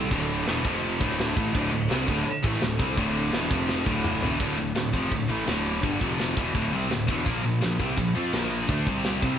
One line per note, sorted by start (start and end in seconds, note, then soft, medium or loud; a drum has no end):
0.00 0.10 C2 medium
0.00 4.36 F3 medium
0.00 0.10 G3 medium
0.00 0.11 C4 loud
0.00 0.63 D4 medium
0.00 0.63 A4 medium
0.10 0.44 D1 medium
0.10 0.45 D2 loud
0.10 0.46 A2 loud
0.10 0.46 D3 loud
0.10 kick loud
0.10 open hi-hat medium
0.29 open hi-hat medium
0.46 0.64 E1 loud
0.46 0.64 E2 loud
0.46 0.64 B2 loud
0.46 0.64 E3 medium
0.46 snare loud
0.46 open hi-hat medium
0.64 0.98 F1 medium
0.64 1.00 F2 medium
0.64 1.00 C3 loud
0.64 1.01 F3 loud
0.64 kick loud
0.64 crash loud
1.00 1.34 D1 loud
1.00 1.35 D2 medium
1.00 1.35 A2 loud
1.00 1.36 D3 loud
1.00 3.49 D4 medium
1.00 3.49 A4 medium
1.00 kick loud
1.00 open hi-hat medium
1.11 snare soft
1.19 snare loud
1.19 open hi-hat medium
1.36 1.53 A1 medium
1.36 1.53 A2 medium
1.36 1.54 E3 loud
1.36 1.54 A3 medium
1.36 kick loud
1.36 open hi-hat medium
1.54 1.71 D1 medium
1.54 1.71 D2 loud
1.54 1.71 A2 loud
1.54 1.72 D3 loud
1.54 kick loud
1.54 crash loud
1.72 1.89 D1 medium
1.72 1.86 D2 medium
1.72 1.86 A2 medium
1.72 open hi-hat medium
1.89 2.07 C2 loud
1.89 2.07 C3 medium
1.89 2.07 G3 loud
1.89 2.07 C4 loud
1.89 snare loud
1.89 open hi-hat medium
2.07 2.24 D1 medium
2.07 2.24 D2 medium
2.07 2.25 A2 loud
2.07 2.25 D3 loud
2.07 kick loud
2.07 open hi-hat medium
2.25 muted distorted electric guitar stroke medium
2.25 muted picked electric bass stroke soft
2.25 open hi-hat medium
2.43 2.60 A1 loud
2.43 2.60 A2 medium
2.43 2.61 E3 medium
2.43 2.61 A3 loud
2.43 kick loud
2.43 open hi-hat medium
2.54 snare soft
2.61 2.78 D1 medium
2.61 2.75 D2 medium
2.61 2.76 A2 medium
2.61 snare loud
2.61 open hi-hat medium
2.79 2.96 C2 medium
2.79 2.96 C3 loud
2.79 2.96 G3 loud
2.79 2.97 C4 loud
2.79 kick loud
2.79 snare soft
2.79 open hi-hat medium
2.97 3.30 D1 medium
2.97 3.32 D2 medium
2.97 3.32 A2 loud
2.97 3.33 D3 loud
2.97 kick loud
2.97 open hi-hat medium
3.15 open hi-hat medium
3.32 3.49 E1 medium
3.32 3.49 E2 medium
3.32 3.50 B2 medium
3.32 3.50 E3 medium
3.32 snare loud
3.32 open hi-hat medium
3.49 3.84 F1 loud
3.49 3.85 F2 medium
3.49 3.85 C3 medium
3.49 3.86 F3 loud
3.49 kick loud
3.49 open hi-hat medium
3.69 snare medium
3.86 4.20 D1 loud
3.86 4.21 D2 medium
3.86 4.22 A2 loud
3.86 4.22 D3 loud
3.86 kick loud
4.04 mid tom loud
4.22 4.38 E1 medium
4.22 4.39 E2 medium
4.22 4.39 B2 medium
4.22 4.40 E3 loud
4.22 floor tom loud
4.39 4.57 D1 medium
4.39 4.56 D2 medium
4.39 4.57 A2 medium
4.39 4.57 D3 loud
4.39 kick loud
4.39 ride medium
4.57 4.74 D1 medium
4.57 4.72 D2 medium
4.57 4.72 A2 medium
4.57 ride medium
4.75 4.92 D1 medium
4.75 4.90 D2 medium
4.75 4.90 A2 medium
4.75 snare loud
4.75 ride loud
4.93 5.10 F1 medium
4.93 5.10 F2 loud
4.93 5.11 C3 medium
4.93 5.11 F3 loud
4.93 kick medium
4.93 ride medium
5.11 5.28 D1 medium
5.11 5.26 D2 medium
5.11 5.26 A2 medium
5.11 kick medium
5.11 ride medium
5.29 5.46 A1 loud
5.29 5.46 A2 medium
5.29 5.47 E3 medium
5.29 5.47 A3 loud
5.29 ride medium
5.46 5.80 D1 medium
5.46 5.82 D2 medium
5.46 5.83 A2 medium
5.46 5.82 D3 medium
5.46 snare loud
5.46 ride loud
5.66 ride medium
5.83 6.00 G1 medium
5.83 6.00 G2 loud
5.83 6.00 D3 loud
5.83 6.01 G3 medium
5.83 kick loud
5.83 ride medium
6.01 6.34 F1 medium
6.01 6.36 F2 medium
6.01 6.36 C3 medium
6.01 6.37 F3 loud
6.01 kick medium
6.01 ride medium
6.19 snare loud
6.19 ride loud
6.37 6.53 E1 medium
6.37 6.53 E2 medium
6.37 6.54 B2 medium
6.37 6.55 E3 loud
6.37 kick loud
6.37 ride medium
6.54 6.71 D1 medium
6.54 6.71 D2 loud
6.54 6.72 A2 loud
6.54 6.72 D3 loud
6.54 kick loud
6.54 ride medium
6.72 6.89 C2 loud
6.72 6.89 C3 medium
6.72 6.90 G3 loud
6.72 6.90 C4 medium
6.72 ride medium
6.90 7.07 D1 medium
6.90 7.04 D2 medium
6.90 7.04 A2 medium
6.90 snare loud
6.90 ride medium
7.07 7.25 E1 medium
7.07 7.25 E2 medium
7.07 7.25 B2 medium
7.07 7.26 E3 medium
7.07 kick loud
7.07 ride medium
7.25 7.43 A#1 medium
7.25 7.42 A#2 loud
7.25 7.43 F3 loud
7.25 7.43 A#3 medium
7.25 kick loud
7.25 ride loud
7.43 7.61 A#1 medium
7.43 7.58 A#2 medium
7.43 7.58 F3 medium
7.43 ride medium
7.61 7.78 A#1 medium
7.61 7.76 A#2 medium
7.61 7.76 F3 medium
7.61 snare loud
7.61 ride medium
7.79 7.96 C2 medium
7.79 7.96 C3 medium
7.79 7.97 G3 medium
7.79 7.97 C4 loud
7.79 kick medium
7.79 ride medium
7.97 8.14 A#1 medium
7.97 8.11 A#2 medium
7.97 8.12 F3 medium
7.97 kick medium
7.97 ride medium
8.15 8.32 F2 loud
8.15 8.32 F3 medium
8.15 8.32 C4 loud
8.15 8.33 F4 loud
8.15 ride medium
8.33 8.66 A#1 loud
8.33 8.68 A#2 medium
8.33 8.68 F3 medium
8.33 8.68 A#3 medium
8.33 snare loud
8.33 ride loud
8.50 ride medium
8.68 8.85 D2 medium
8.68 8.86 D3 loud
8.68 8.86 A3 medium
8.68 8.86 D4 loud
8.68 kick loud
8.68 ride medium
8.86 9.20 C2 medium
8.86 9.21 C3 medium
8.86 9.22 G3 medium
8.86 9.22 C4 medium
8.86 kick medium
8.86 ride medium
9.04 snare loud
9.04 ride medium
9.22 9.39 C2 medium
9.22 9.39 C3 loud
9.22 9.39 G3 medium
9.22 9.39 C4 medium
9.22 kick loud
9.22 ride medium